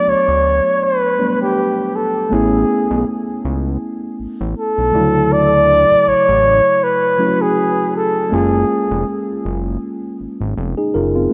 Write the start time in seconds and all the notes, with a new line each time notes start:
Already playing: F#3 A3 B3 D4 D5
0.07 D2 C#5
0.28 D2
0.84 B4
1.18 G3 A3 B3 D4
1.42 G4
1.96 A4
2.30 A1 A3 B3 C#4 G#4
2.34 E4
2.91 B1
3.45 C#2
4.20 A1
4.41 A1
4.58 A4
4.78 B1
4.92 D2 C#3 F3 A3
4.96 F#3 E4
5.33 D5
5.91 A1
6.07 A1 C#5
6.29 A1
6.84 B4
7.18 F#3 A3 C#4 E4
7.27 F#4
7.42 G#4
7.96 A4
8.29 F#1 G#3 A#3 C#4
8.34 F4 G#4
8.91 F1
9.45 F#1
10.21 G#1
10.41 G#1
10.57 F1
10.77 D#4 G#4
10.94 F#1 F4 A#4
11.15 C4 F4
11.30 A3